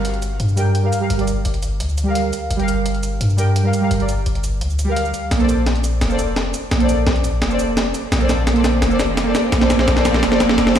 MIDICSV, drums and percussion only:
0, 0, Header, 1, 2, 480
1, 0, Start_track
1, 0, Key_signature, -2, "minor"
1, 0, Tempo, 350877
1, 1510, Time_signature, 4, 2, 24, 8
1, 14761, End_track
2, 0, Start_track
2, 0, Title_t, "Drums"
2, 66, Note_on_c, 9, 42, 92
2, 188, Note_off_c, 9, 42, 0
2, 188, Note_on_c, 9, 42, 35
2, 304, Note_off_c, 9, 42, 0
2, 304, Note_on_c, 9, 42, 69
2, 304, Note_on_c, 9, 69, 59
2, 441, Note_off_c, 9, 42, 0
2, 441, Note_off_c, 9, 69, 0
2, 544, Note_on_c, 9, 42, 94
2, 668, Note_on_c, 9, 69, 26
2, 681, Note_off_c, 9, 42, 0
2, 784, Note_off_c, 9, 69, 0
2, 784, Note_on_c, 9, 42, 65
2, 784, Note_on_c, 9, 69, 56
2, 921, Note_off_c, 9, 42, 0
2, 921, Note_off_c, 9, 69, 0
2, 1024, Note_on_c, 9, 42, 95
2, 1161, Note_off_c, 9, 42, 0
2, 1266, Note_on_c, 9, 42, 67
2, 1266, Note_on_c, 9, 69, 57
2, 1403, Note_off_c, 9, 42, 0
2, 1403, Note_off_c, 9, 69, 0
2, 1506, Note_on_c, 9, 42, 91
2, 1629, Note_off_c, 9, 42, 0
2, 1629, Note_on_c, 9, 42, 37
2, 1744, Note_off_c, 9, 42, 0
2, 1744, Note_on_c, 9, 42, 66
2, 1744, Note_on_c, 9, 69, 56
2, 1881, Note_off_c, 9, 42, 0
2, 1881, Note_off_c, 9, 69, 0
2, 1983, Note_on_c, 9, 42, 88
2, 2106, Note_off_c, 9, 42, 0
2, 2106, Note_on_c, 9, 42, 36
2, 2224, Note_off_c, 9, 42, 0
2, 2224, Note_on_c, 9, 42, 64
2, 2224, Note_on_c, 9, 69, 57
2, 2360, Note_off_c, 9, 42, 0
2, 2360, Note_off_c, 9, 69, 0
2, 2464, Note_on_c, 9, 42, 94
2, 2589, Note_on_c, 9, 69, 25
2, 2600, Note_off_c, 9, 42, 0
2, 2705, Note_off_c, 9, 69, 0
2, 2705, Note_on_c, 9, 42, 63
2, 2705, Note_on_c, 9, 69, 56
2, 2841, Note_off_c, 9, 42, 0
2, 2841, Note_off_c, 9, 69, 0
2, 2945, Note_on_c, 9, 42, 93
2, 3082, Note_off_c, 9, 42, 0
2, 3186, Note_on_c, 9, 42, 64
2, 3186, Note_on_c, 9, 69, 55
2, 3323, Note_off_c, 9, 42, 0
2, 3323, Note_off_c, 9, 69, 0
2, 3427, Note_on_c, 9, 42, 90
2, 3551, Note_off_c, 9, 42, 0
2, 3551, Note_on_c, 9, 42, 35
2, 3669, Note_off_c, 9, 42, 0
2, 3669, Note_on_c, 9, 42, 64
2, 3669, Note_on_c, 9, 69, 58
2, 3806, Note_off_c, 9, 42, 0
2, 3806, Note_off_c, 9, 69, 0
2, 3907, Note_on_c, 9, 42, 90
2, 4030, Note_off_c, 9, 42, 0
2, 4030, Note_on_c, 9, 42, 33
2, 4147, Note_off_c, 9, 42, 0
2, 4147, Note_on_c, 9, 42, 62
2, 4147, Note_on_c, 9, 69, 55
2, 4283, Note_off_c, 9, 42, 0
2, 4283, Note_off_c, 9, 69, 0
2, 4388, Note_on_c, 9, 42, 91
2, 4514, Note_on_c, 9, 69, 25
2, 4525, Note_off_c, 9, 42, 0
2, 4628, Note_off_c, 9, 69, 0
2, 4628, Note_on_c, 9, 42, 62
2, 4628, Note_on_c, 9, 69, 57
2, 4765, Note_off_c, 9, 42, 0
2, 4765, Note_off_c, 9, 69, 0
2, 4869, Note_on_c, 9, 42, 91
2, 5006, Note_off_c, 9, 42, 0
2, 5108, Note_on_c, 9, 42, 63
2, 5108, Note_on_c, 9, 69, 55
2, 5245, Note_off_c, 9, 42, 0
2, 5245, Note_off_c, 9, 69, 0
2, 5347, Note_on_c, 9, 42, 87
2, 5474, Note_off_c, 9, 42, 0
2, 5474, Note_on_c, 9, 42, 34
2, 5590, Note_off_c, 9, 42, 0
2, 5590, Note_on_c, 9, 42, 63
2, 5590, Note_on_c, 9, 69, 57
2, 5727, Note_off_c, 9, 42, 0
2, 5727, Note_off_c, 9, 69, 0
2, 5829, Note_on_c, 9, 42, 86
2, 5956, Note_off_c, 9, 42, 0
2, 5956, Note_on_c, 9, 42, 34
2, 6070, Note_off_c, 9, 42, 0
2, 6070, Note_on_c, 9, 42, 60
2, 6070, Note_on_c, 9, 69, 56
2, 6207, Note_off_c, 9, 42, 0
2, 6207, Note_off_c, 9, 69, 0
2, 6310, Note_on_c, 9, 42, 91
2, 6433, Note_on_c, 9, 69, 25
2, 6447, Note_off_c, 9, 42, 0
2, 6552, Note_off_c, 9, 69, 0
2, 6552, Note_on_c, 9, 42, 61
2, 6552, Note_on_c, 9, 69, 58
2, 6689, Note_off_c, 9, 42, 0
2, 6689, Note_off_c, 9, 69, 0
2, 6791, Note_on_c, 9, 42, 87
2, 6914, Note_on_c, 9, 69, 26
2, 6928, Note_off_c, 9, 42, 0
2, 7030, Note_off_c, 9, 69, 0
2, 7030, Note_on_c, 9, 42, 62
2, 7030, Note_on_c, 9, 69, 58
2, 7167, Note_off_c, 9, 42, 0
2, 7167, Note_off_c, 9, 69, 0
2, 7268, Note_on_c, 9, 38, 49
2, 7268, Note_on_c, 9, 42, 90
2, 7391, Note_off_c, 9, 42, 0
2, 7391, Note_on_c, 9, 42, 35
2, 7404, Note_off_c, 9, 38, 0
2, 7509, Note_off_c, 9, 42, 0
2, 7509, Note_on_c, 9, 42, 64
2, 7509, Note_on_c, 9, 69, 61
2, 7646, Note_off_c, 9, 42, 0
2, 7646, Note_off_c, 9, 69, 0
2, 7749, Note_on_c, 9, 38, 50
2, 7749, Note_on_c, 9, 42, 89
2, 7873, Note_off_c, 9, 42, 0
2, 7873, Note_on_c, 9, 42, 34
2, 7886, Note_off_c, 9, 38, 0
2, 7988, Note_off_c, 9, 42, 0
2, 7988, Note_on_c, 9, 42, 60
2, 7988, Note_on_c, 9, 69, 60
2, 8125, Note_off_c, 9, 42, 0
2, 8125, Note_off_c, 9, 69, 0
2, 8226, Note_on_c, 9, 38, 54
2, 8226, Note_on_c, 9, 42, 87
2, 8351, Note_on_c, 9, 69, 26
2, 8363, Note_off_c, 9, 38, 0
2, 8363, Note_off_c, 9, 42, 0
2, 8466, Note_off_c, 9, 69, 0
2, 8466, Note_on_c, 9, 42, 62
2, 8466, Note_on_c, 9, 69, 61
2, 8603, Note_off_c, 9, 42, 0
2, 8603, Note_off_c, 9, 69, 0
2, 8705, Note_on_c, 9, 38, 56
2, 8705, Note_on_c, 9, 42, 88
2, 8842, Note_off_c, 9, 38, 0
2, 8842, Note_off_c, 9, 42, 0
2, 8945, Note_on_c, 9, 42, 61
2, 8945, Note_on_c, 9, 69, 61
2, 9082, Note_off_c, 9, 42, 0
2, 9082, Note_off_c, 9, 69, 0
2, 9184, Note_on_c, 9, 38, 58
2, 9184, Note_on_c, 9, 42, 95
2, 9307, Note_off_c, 9, 42, 0
2, 9307, Note_on_c, 9, 42, 37
2, 9321, Note_off_c, 9, 38, 0
2, 9425, Note_off_c, 9, 42, 0
2, 9425, Note_on_c, 9, 42, 67
2, 9425, Note_on_c, 9, 69, 64
2, 9562, Note_off_c, 9, 42, 0
2, 9562, Note_off_c, 9, 69, 0
2, 9666, Note_on_c, 9, 38, 61
2, 9666, Note_on_c, 9, 42, 88
2, 9791, Note_off_c, 9, 42, 0
2, 9791, Note_on_c, 9, 42, 35
2, 9803, Note_off_c, 9, 38, 0
2, 9907, Note_off_c, 9, 42, 0
2, 9907, Note_on_c, 9, 42, 66
2, 9907, Note_on_c, 9, 69, 61
2, 10043, Note_off_c, 9, 42, 0
2, 10043, Note_off_c, 9, 69, 0
2, 10146, Note_on_c, 9, 38, 66
2, 10146, Note_on_c, 9, 42, 94
2, 10271, Note_on_c, 9, 69, 28
2, 10283, Note_off_c, 9, 38, 0
2, 10283, Note_off_c, 9, 42, 0
2, 10387, Note_off_c, 9, 69, 0
2, 10387, Note_on_c, 9, 42, 63
2, 10387, Note_on_c, 9, 69, 61
2, 10524, Note_off_c, 9, 42, 0
2, 10524, Note_off_c, 9, 69, 0
2, 10628, Note_on_c, 9, 38, 71
2, 10628, Note_on_c, 9, 42, 93
2, 10765, Note_off_c, 9, 38, 0
2, 10765, Note_off_c, 9, 42, 0
2, 10867, Note_on_c, 9, 42, 67
2, 10867, Note_on_c, 9, 69, 62
2, 11004, Note_off_c, 9, 42, 0
2, 11004, Note_off_c, 9, 69, 0
2, 11107, Note_on_c, 9, 38, 76
2, 11107, Note_on_c, 9, 42, 100
2, 11231, Note_off_c, 9, 42, 0
2, 11231, Note_on_c, 9, 42, 38
2, 11244, Note_off_c, 9, 38, 0
2, 11345, Note_off_c, 9, 42, 0
2, 11345, Note_on_c, 9, 38, 78
2, 11345, Note_on_c, 9, 42, 68
2, 11345, Note_on_c, 9, 69, 64
2, 11482, Note_off_c, 9, 38, 0
2, 11482, Note_off_c, 9, 42, 0
2, 11482, Note_off_c, 9, 69, 0
2, 11586, Note_on_c, 9, 38, 78
2, 11586, Note_on_c, 9, 42, 95
2, 11708, Note_off_c, 9, 42, 0
2, 11708, Note_on_c, 9, 42, 37
2, 11723, Note_off_c, 9, 38, 0
2, 11823, Note_off_c, 9, 42, 0
2, 11823, Note_on_c, 9, 38, 83
2, 11823, Note_on_c, 9, 42, 68
2, 11823, Note_on_c, 9, 69, 65
2, 11960, Note_off_c, 9, 38, 0
2, 11960, Note_off_c, 9, 42, 0
2, 11960, Note_off_c, 9, 69, 0
2, 12065, Note_on_c, 9, 38, 83
2, 12065, Note_on_c, 9, 42, 98
2, 12189, Note_on_c, 9, 69, 29
2, 12202, Note_off_c, 9, 38, 0
2, 12202, Note_off_c, 9, 42, 0
2, 12305, Note_off_c, 9, 69, 0
2, 12305, Note_on_c, 9, 38, 85
2, 12305, Note_on_c, 9, 42, 69
2, 12305, Note_on_c, 9, 69, 64
2, 12442, Note_off_c, 9, 38, 0
2, 12442, Note_off_c, 9, 42, 0
2, 12442, Note_off_c, 9, 69, 0
2, 12548, Note_on_c, 9, 38, 89
2, 12548, Note_on_c, 9, 42, 99
2, 12685, Note_off_c, 9, 38, 0
2, 12685, Note_off_c, 9, 42, 0
2, 12788, Note_on_c, 9, 38, 91
2, 12788, Note_on_c, 9, 42, 70
2, 12788, Note_on_c, 9, 69, 62
2, 12925, Note_off_c, 9, 38, 0
2, 12925, Note_off_c, 9, 42, 0
2, 12925, Note_off_c, 9, 69, 0
2, 13027, Note_on_c, 9, 38, 94
2, 13027, Note_on_c, 9, 42, 100
2, 13153, Note_off_c, 9, 38, 0
2, 13153, Note_off_c, 9, 42, 0
2, 13153, Note_on_c, 9, 38, 84
2, 13153, Note_on_c, 9, 42, 40
2, 13153, Note_on_c, 9, 69, 29
2, 13270, Note_off_c, 9, 38, 0
2, 13270, Note_off_c, 9, 42, 0
2, 13270, Note_off_c, 9, 69, 0
2, 13270, Note_on_c, 9, 38, 97
2, 13270, Note_on_c, 9, 42, 73
2, 13270, Note_on_c, 9, 69, 64
2, 13395, Note_off_c, 9, 38, 0
2, 13395, Note_on_c, 9, 38, 86
2, 13407, Note_off_c, 9, 42, 0
2, 13407, Note_off_c, 9, 69, 0
2, 13511, Note_off_c, 9, 38, 0
2, 13511, Note_on_c, 9, 38, 96
2, 13511, Note_on_c, 9, 42, 95
2, 13635, Note_off_c, 9, 38, 0
2, 13635, Note_off_c, 9, 42, 0
2, 13635, Note_on_c, 9, 38, 82
2, 13635, Note_on_c, 9, 42, 38
2, 13635, Note_on_c, 9, 69, 28
2, 13750, Note_off_c, 9, 38, 0
2, 13750, Note_off_c, 9, 42, 0
2, 13750, Note_off_c, 9, 69, 0
2, 13750, Note_on_c, 9, 38, 101
2, 13750, Note_on_c, 9, 42, 72
2, 13750, Note_on_c, 9, 69, 63
2, 13878, Note_off_c, 9, 38, 0
2, 13878, Note_off_c, 9, 42, 0
2, 13878, Note_on_c, 9, 38, 87
2, 13878, Note_on_c, 9, 42, 38
2, 13887, Note_off_c, 9, 69, 0
2, 13992, Note_off_c, 9, 38, 0
2, 13992, Note_off_c, 9, 42, 0
2, 13992, Note_on_c, 9, 38, 102
2, 13992, Note_on_c, 9, 42, 100
2, 14115, Note_off_c, 9, 38, 0
2, 14115, Note_on_c, 9, 38, 87
2, 14115, Note_on_c, 9, 69, 27
2, 14128, Note_off_c, 9, 42, 0
2, 14230, Note_off_c, 9, 38, 0
2, 14230, Note_off_c, 9, 69, 0
2, 14230, Note_on_c, 9, 38, 101
2, 14230, Note_on_c, 9, 42, 68
2, 14230, Note_on_c, 9, 69, 62
2, 14356, Note_off_c, 9, 38, 0
2, 14356, Note_on_c, 9, 38, 90
2, 14367, Note_off_c, 9, 42, 0
2, 14367, Note_off_c, 9, 69, 0
2, 14472, Note_off_c, 9, 38, 0
2, 14472, Note_on_c, 9, 38, 107
2, 14472, Note_on_c, 9, 42, 98
2, 14596, Note_off_c, 9, 38, 0
2, 14596, Note_on_c, 9, 38, 96
2, 14596, Note_on_c, 9, 69, 28
2, 14609, Note_off_c, 9, 42, 0
2, 14713, Note_off_c, 9, 38, 0
2, 14713, Note_off_c, 9, 69, 0
2, 14713, Note_on_c, 9, 38, 109
2, 14713, Note_on_c, 9, 42, 72
2, 14713, Note_on_c, 9, 69, 64
2, 14761, Note_off_c, 9, 38, 0
2, 14761, Note_off_c, 9, 42, 0
2, 14761, Note_off_c, 9, 69, 0
2, 14761, End_track
0, 0, End_of_file